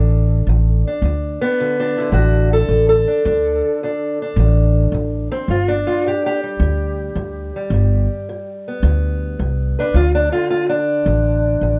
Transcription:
0.00 0.44 A1 loud
0.00 0.45 D2 medium
0.00 1.06 D3 soft
0.00 0.87 D4 soft
0.00 0.68 A4 medium
0.47 0.82 A1 medium
0.47 1.01 D2 medium
0.87 1.43 D4 soft
1.02 1.37 D2 medium
1.02 1.57 D2 medium
1.41 2.13 B3 medium
1.41 1.79 D4 soft
1.60 2.12 D2 medium
1.60 1.99 D3 soft
1.80 2.53 D4 medium
1.98 5.50 D3 soft
1.98 2.71 E4 medium
2.12 2.65 A1 medium
2.12 2.67 D2 medium
2.12 2.51 F#4 medium
2.53 2.88 A4 medium
2.69 3.04 A1 medium
2.69 3.23 D2 medium
2.89 5.12 A4 loud
3.08 3.26 D4 soft
3.25 3.78 D2 medium
3.25 3.60 D2 medium
3.25 3.84 D4 soft
3.83 4.35 D2 medium
3.83 4.22 D4 soft
4.22 5.31 D4 soft
4.36 4.89 A1 loud
4.36 4.91 D2 medium
4.92 5.27 A1 medium
4.92 5.46 D2 medium
5.32 5.50 C4 medium
5.48 5.83 G1 medium
5.48 6.01 G2 medium
5.48 5.68 F4 medium
5.68 6.43 D4 medium
5.87 6.05 F4 medium
6.06 6.58 G2 medium
6.06 6.25 G4 medium
6.26 8.48 G4 medium
6.43 7.54 G3 soft
6.60 7.12 D2 loud
6.60 7.13 G2 medium
7.15 7.50 D2 medium
7.15 7.68 G2 medium
7.56 9.77 G3 soft
7.70 8.05 G1 medium
7.70 8.25 G2 medium
8.29 8.80 G2 medium
8.68 9.95 B3 soft
8.83 9.35 D2 loud
8.83 9.36 G2 medium
9.39 9.74 C2 medium
9.39 9.91 G2 medium
9.79 9.97 D4 medium
9.79 9.94 B4 soft
9.94 10.29 D2 loud
9.94 10.47 D2 medium
9.94 10.14 F4 medium
10.15 10.32 D4 medium
10.32 11.79 D3 soft
10.32 10.49 F4 medium
10.50 11.03 D2 medium
10.50 10.69 F4 medium
10.69 11.79 D4 medium
11.06 11.58 A1 loud
11.06 11.59 D2 medium
11.61 11.79 A1 medium
11.61 11.79 D2 medium

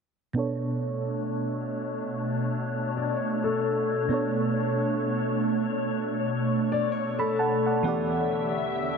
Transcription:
0.33 4.05 B2 medium
0.33 7.81 B2 medium
0.33 7.81 A3 medium
0.33 4.06 B3 medium
0.33 4.07 D4 medium
0.33 7.82 D4 medium
0.33 7.81 C#5 medium
0.38 4.07 A4 medium
0.38 4.08 C#5 medium
2.97 3.16 D5 medium
3.16 3.42 C#5 medium
3.44 4.80 A4 medium
4.09 7.80 B2 medium
4.09 7.81 B3 medium
4.09 7.82 D4 medium
4.13 7.82 A4 medium
4.13 6.42 C#5 medium
6.72 6.92 D5 medium
6.92 7.17 C#5 medium
7.19 8.55 A4 medium
7.19 7.38 B5 medium
7.39 7.65 F#5 medium
7.39 7.65 A5 medium
7.66 7.87 D5 soft
7.66 7.84 F#5 medium
7.83 8.97 E2 medium
7.83 8.97 D3 medium
7.83 8.97 E3 medium
7.83 8.97 B3 medium
7.83 8.97 G4 medium
7.83 8.97 E5 medium
7.83 8.97 F#5 medium
7.87 8.97 G4 medium
7.87 8.97 D5 medium

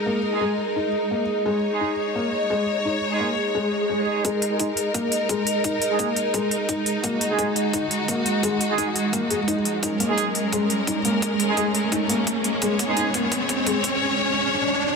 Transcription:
0.00 4.21 G#3 medium
0.00 4.21 D#4 medium
0.00 14.01 G#4 medium
0.00 1.45 A#4 medium
0.00 14.01 D#5 medium
0.06 0.16 A#3 medium
0.32 0.48 G#3 medium
0.32 0.48 D#4 medium
0.32 0.48 G#4 loud
0.41 0.51 G#3 loud
0.76 0.86 D#4 medium
1.11 1.21 A#3 medium
1.46 1.56 G#3 loud
1.46 4.24 C#5 medium
1.72 1.88 G#3 medium
1.72 1.88 D#4 medium
1.72 1.88 G#4 loud
1.80 1.91 D#4 medium
2.15 2.26 A#3 medium
2.50 2.61 G#3 medium
2.85 2.95 D#4 medium
3.11 3.27 G#3 medium
3.11 3.27 D#4 medium
3.11 3.27 G#4 loud
3.20 3.30 A#3 medium
3.55 3.65 G#3 loud
3.55 swell medium
3.90 4.00 G#3 medium
3.98 4.24 G#3 medium
3.98 4.24 D#4 medium
3.98 4.24 G#4 medium
4.25 4.35 G#3 loud
4.25 14.96 G#3 medium
4.25 9.79 D#4 medium
4.25 7.03 A#4 medium
4.25 kick loud
4.25 closed hi-hat medium
4.25 riser medium
4.42 closed hi-hat loud
4.51 4.67 G#3 medium
4.51 4.67 D#4 medium
4.51 4.67 G#4 loud
4.59 4.70 D#4 medium
4.59 kick loud
4.59 closed hi-hat medium
4.77 closed hi-hat medium
4.94 5.05 A#3 medium
4.94 kick medium
4.94 closed hi-hat medium
5.12 closed hi-hat medium
5.29 5.40 G#3 medium
5.29 kick loud
5.29 closed hi-hat medium
5.47 closed hi-hat medium
5.64 5.75 D#4 medium
5.64 kick loud
5.64 closed hi-hat medium
5.82 closed hi-hat loud
5.90 6.07 G#3 loud
5.90 6.07 D#4 medium
5.90 6.07 G#4 loud
5.99 6.09 A#3 medium
5.99 kick loud
5.99 closed hi-hat medium
6.16 closed hi-hat medium
6.34 6.44 G#3 loud
6.34 kick medium
6.34 closed hi-hat medium
6.51 closed hi-hat medium
6.69 6.79 D#4 medium
6.69 kick loud
6.69 closed hi-hat medium
6.86 closed hi-hat medium
7.04 7.14 A#3 medium
7.04 9.82 F#4 medium
7.04 kick loud
7.04 closed hi-hat medium
7.21 closed hi-hat medium
7.30 7.46 G#3 loud
7.30 7.46 D#4 medium
7.30 7.46 G#4 loud
7.39 7.49 G#3 loud
7.39 kick loud
7.39 closed hi-hat medium
7.56 closed hi-hat medium
7.73 7.84 D#4 medium
7.73 kick medium
7.73 closed hi-hat medium
7.91 closed hi-hat medium
8.08 8.19 A#3 medium
8.08 kick loud
8.08 closed hi-hat medium
8.26 closed hi-hat medium
8.43 8.54 G#3 loud
8.43 kick medium
8.43 closed hi-hat medium
8.61 closed hi-hat medium
8.69 8.86 G#3 loud
8.69 8.86 D#4 medium
8.69 8.86 G#4 loud
8.78 8.89 D#4 medium
8.78 kick loud
8.78 closed hi-hat medium
8.96 closed hi-hat medium
9.13 9.23 A#3 medium
9.13 kick loud
9.13 closed hi-hat medium
9.30 9.37 G#4 medium
9.30 closed hi-hat medium
9.48 9.54 D#4 loud
9.48 kick medium
9.48 closed hi-hat medium
9.65 closed hi-hat medium
9.83 14.96 C#4 medium
9.83 9.93 D#4 medium
9.83 12.61 A#4 medium
9.83 kick loud
9.83 closed hi-hat medium
10.00 10.11 A#3 medium
10.00 closed hi-hat medium
10.09 10.25 G#3 medium
10.09 10.25 D#4 medium
10.09 10.25 G#4 loud
10.18 kick loud
10.18 closed hi-hat medium
10.35 closed hi-hat medium
10.52 10.63 G#3 loud
10.52 kick loud
10.52 closed hi-hat medium
10.70 closed hi-hat medium
10.87 10.98 D#4 medium
10.87 kick loud
10.87 closed hi-hat medium
11.05 11.15 A#3 medium
11.05 closed hi-hat medium
11.22 kick loud
11.22 closed hi-hat medium
11.40 closed hi-hat medium
11.48 11.65 G#3 loud
11.48 11.65 D#4 medium
11.48 11.65 G#4 loud
11.57 11.68 G#3 loud
11.57 kick loud
11.57 closed hi-hat medium
11.75 closed hi-hat medium
11.92 12.02 D#4 medium
11.92 kick loud
11.92 closed hi-hat medium
12.09 12.20 A#3 medium
12.09 closed hi-hat medium
12.27 kick loud
12.27 closed hi-hat medium
12.44 closed hi-hat medium
12.62 12.72 G#3 loud
12.62 14.96 C#5 medium
12.62 kick loud
12.62 closed hi-hat medium
12.79 kick loud
12.79 closed hi-hat loud
12.88 13.04 G#3 medium
12.88 13.04 D#4 medium
12.88 13.04 G#4 loud
12.97 13.07 D#4 medium
12.97 kick loud
12.97 closed hi-hat medium
13.14 13.25 A#3 medium
13.14 kick loud
13.14 closed hi-hat medium
13.32 kick loud
13.32 closed hi-hat medium
13.49 kick loud
13.49 closed hi-hat medium
13.66 13.77 G#3 loud
13.66 kick loud
13.66 closed hi-hat medium
13.84 kick loud
13.84 closed hi-hat loud

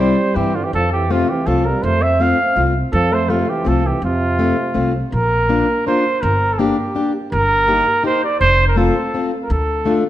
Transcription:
0.00 0.11 C2 medium
0.00 0.16 G3 medium
0.00 0.38 G3 medium
0.00 0.16 C4 medium
0.00 0.16 E4 medium
0.00 0.37 C5 medium
0.35 0.60 G2 medium
0.35 0.58 E3 medium
0.35 0.53 G3 medium
0.35 0.53 C4 soft
0.35 0.53 E4 medium
0.35 0.56 G4 medium
0.55 0.66 D3 medium
0.55 0.65 F4 medium
0.64 0.73 E3 medium
0.64 0.73 G4 medium
0.73 1.21 F2 medium
0.73 0.91 F3 medium
0.73 0.92 A4 medium
0.93 1.13 E3 medium
0.93 1.13 G4 medium
1.10 1.31 C3 medium
1.10 1.27 A3 medium
1.10 1.28 C4 medium
1.10 1.27 F4 medium
1.10 1.31 F4 medium
1.29 1.50 E3 medium
1.29 1.48 G4 medium
1.46 1.70 C2 medium
1.46 1.68 F3 medium
1.46 1.64 A3 medium
1.46 1.64 C4 soft
1.46 1.64 F4 medium
1.46 1.66 A4 medium
1.65 1.85 G3 medium
1.65 1.85 A#4 medium
1.83 2.31 F2 medium
1.83 2.04 A3 medium
1.83 2.04 C5 medium
2.02 2.20 C4 medium
2.02 2.23 E5 medium
2.20 2.37 A3 medium
2.20 2.67 C4 medium
2.20 2.37 C4 medium
2.20 2.37 F4 medium
2.20 2.67 F5 medium
2.56 2.80 C2 medium
2.56 2.73 A3 soft
2.56 2.73 C4 medium
2.56 2.74 F4 medium
2.93 3.40 F2 loud
2.93 3.14 F3 medium
2.93 3.15 A4 loud
3.12 3.32 A3 medium
3.12 3.31 C5 medium
3.30 3.50 C3 medium
3.30 3.47 A3 medium
3.30 3.47 C4 medium
3.30 3.51 F4 medium
3.30 3.47 F4 medium
3.49 3.68 E3 medium
3.49 3.69 G4 medium
3.65 3.90 C2 medium
3.65 3.88 F3 medium
3.65 3.82 A3 soft
3.65 3.83 C4 soft
3.65 3.83 F4 medium
3.65 3.88 A4 medium
3.86 4.03 E3 medium
3.86 4.03 G4 medium
4.02 4.50 F2 medium
4.02 4.91 C3 medium
4.02 4.92 F4 medium
4.39 4.56 A3 medium
4.39 4.56 C4 medium
4.39 4.56 F4 medium
4.74 4.99 C2 medium
4.74 4.92 A3 medium
4.74 4.92 C4 medium
4.74 4.93 F4 medium
5.12 5.60 A#1 medium
5.12 5.82 A#4 medium
5.49 5.66 A#3 medium
5.49 5.66 D4 medium
5.49 5.67 F4 medium
5.87 6.03 A#3 medium
5.87 6.03 D4 medium
5.87 6.04 F4 medium
5.87 6.23 C5 medium
6.22 6.70 G1 medium
6.22 6.54 A#4 loud
6.53 6.61 A4 medium
6.59 6.76 A#3 medium
6.59 6.76 D4 medium
6.59 7.14 G4 medium
6.59 6.76 G4 medium
6.95 7.12 A#3 medium
6.95 7.12 D4 medium
6.95 7.12 G4 medium
7.32 7.79 G1 medium
7.32 8.01 A#4 loud
7.68 7.85 A#3 medium
7.68 7.85 D#4 medium
7.68 7.85 G4 medium
8.03 8.20 A#3 soft
8.03 8.21 D#4 medium
8.03 8.21 G4 medium
8.03 8.22 C5 loud
8.24 8.40 D5 medium
8.40 8.88 F1 medium
8.40 8.66 C5 loud
8.68 8.78 A#4 medium
8.76 8.93 A3 medium
8.76 8.94 C4 medium
8.76 8.94 F4 medium
8.76 9.32 A4 medium
9.14 9.31 A3 medium
9.14 9.31 C4 medium
9.14 9.31 F4 medium
9.43 9.53 A#4 medium
9.50 9.97 D2 medium
9.50 9.97 A4 medium
9.86 10.03 A3 medium
9.86 10.03 D4 medium
9.86 10.04 F4 medium

